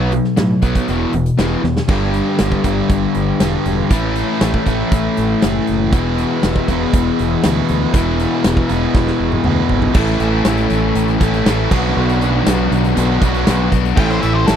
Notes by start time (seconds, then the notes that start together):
Already playing: B1 B2 F#3 B3
0.12 B2 F#3, closed hi-hat
0.24 snare
0.37 A2 B2 F#3, snare, closed hi-hat
0.62 B1 B2 F#3 B3, kick, closed hi-hat
0.75 kick, closed hi-hat
0.87 E1 E2 B2 E3, closed hi-hat
1.13 E1 E2 B2, closed hi-hat
1.26 closed hi-hat
1.38 E1 E2 B2 E3, snare, closed hi-hat
1.64 E2 B2, snare
1.77 snare
1.88 G1 G2 D3 G3 B3 D4 G4, kick, crash
2.14 closed hi-hat
2.39 G1, snare, closed hi-hat
2.52 kick
2.64 G1 G2 D3 G3 B3 D4 G4, kick, closed hi-hat
2.89 G1, kick, closed hi-hat
3.15 G1, closed hi-hat
3.39 E1 G2 D3 G3 B3 D4 G4, snare, closed hi-hat
3.65 E1, snare, closed hi-hat
3.89 A1 A2 E3 A3 C#4 E4, kick, closed hi-hat
4.16 closed hi-hat
4.41 A1, snare, closed hi-hat
4.54 kick
4.66 A1 A2 E3 A3 C#4 E4, kick, closed hi-hat
4.92 A1, kick, closed hi-hat
5.17 A1, closed hi-hat
5.41 F#1 A2 E3 A3 C#4 E4, snare, closed hi-hat
5.67 F#1, closed hi-hat
5.92 E1 E2 B2 E3 G#3 B3 E4 G#4 E5, kick, closed hi-hat
6.18 closed hi-hat
6.43 E1, snare, closed hi-hat
6.56 kick
6.68 E1 E2 B2 E3 G#3 B3 E4, kick, closed hi-hat
6.93 E1, kick, closed hi-hat
7.19 E1, closed hi-hat
7.43 D2 E2 B2 E3 G#3 B3 E4, snare, closed hi-hat
7.68 D2, snare, closed hi-hat
7.94 E1 E2 B2 E3 G#3 B3 E4, kick, closed hi-hat
8.19 closed hi-hat
8.44 E1, snare, closed hi-hat
8.57 kick
8.68 E1 E2 B2 E3 G#3 B3 E4, closed hi-hat
8.94 E1, kick, snare
9.07 snare
9.20 E1
9.32 high tom
9.44 D2 E2 B2 E3 G#3 B3 E4, mid tom
9.66 A3 B3, floor tom
9.71 G#1 C4 D4
9.77 E4 F4
9.82 G4 A4, floor tom
9.88 B4 C5
9.94 A1 A2 E3 A3 C#4 E4 A4 D5 E5, kick, crash
10.07 closed hi-hat
10.20 A1 A3 C#4 E4, closed hi-hat
10.45 A1 A2 E3 A3 C#4 E4, snare, closed hi-hat
10.57 closed hi-hat
10.70 A1, closed hi-hat
10.95 A1, closed hi-hat
11.08 closed hi-hat
11.20 A1 A2 E3 A3 C#4 E4 A4, kick, closed hi-hat
11.34 closed hi-hat
11.44 A1 A2 E3 A3 C#4 E4 A4, snare, closed hi-hat
11.70 B1 B2 F#3 B3 D4 F#4 B4 F#5, kick, snare, crash
11.74 B2
11.96 B1 B2 F#3 B3 D4 F#4
12.09 closed hi-hat
12.21 B3 D4 F#4, closed hi-hat
12.46 B1 B2 F#3 B3 D4 F#4, snare, closed hi-hat
12.71 B1, closed hi-hat
12.84 closed hi-hat
12.96 B1 B2 F#3 B3 D4 F#4, closed hi-hat
13.21 B1 B2 F#3 B3 D4 F#4, kick, closed hi-hat
13.34 closed hi-hat
13.47 B1 F#3 B3 D4 F#4, snare, closed hi-hat
13.72 B1 B3 D4 F#4, kick, snare, closed hi-hat
13.85 closed hi-hat
13.96 A1 A2 E3 A3 C#4 E4 A4 E5 G5, kick, crash
14.10 C5, closed hi-hat
14.22 A1 A3 C#4 E4 E5, closed hi-hat
14.33 C5
14.46 A1 A2 E3 A3 C#4 E4 A4, snare, closed hi-hat